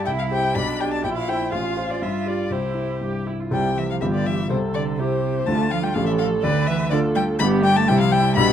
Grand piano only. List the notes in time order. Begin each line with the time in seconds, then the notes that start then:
0.07 C2
0.31 G4 C5
0.56 B1
0.80 G4 D5
1.04 A#1
1.28 E4 C5
1.52 A1
1.77 F4 C5
2.02 G2
2.26 F4 G4
2.50 C2
2.75 E4
3.01 G2
3.27 E4
3.51 C2 C3 C4 E4 G4
4.01 G1 G2 B3 F4 G4
4.50 C2 C3
5.00 C4 E4 G4
5.47 D2 D3 A3 D4 F4
5.95 A1 A2 A3 C#4 G4
6.44 D2 D3
6.91 A3 D4 F4
7.40 G1 G2 G3 D4 G4
7.88 C2 C3 G3 E4 G4
8.37 B1 B2 G3 D4 G4